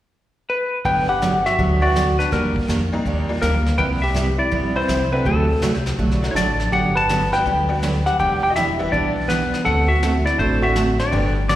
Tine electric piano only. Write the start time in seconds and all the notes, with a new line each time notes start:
0.86 B4
1.09 G4
1.46 F#4
1.82 F#4
2.20 D4
2.32 A#3
3.42 A#3
3.78 B4
4.04 G4
4.38 E4
4.76 E4
5.13 C4
5.27 A3
6.31 E4
6.35 D4
6.72 G4
6.96 B4
7.33 B4
8.06 G4
8.20 G4
8.43 G4
8.52 F#4
8.56 E4
8.92 D4
9.28 B3
9.65 A4
9.88 F#4
10.25 E4
10.38 D4
10.62 F#4
11.00 D4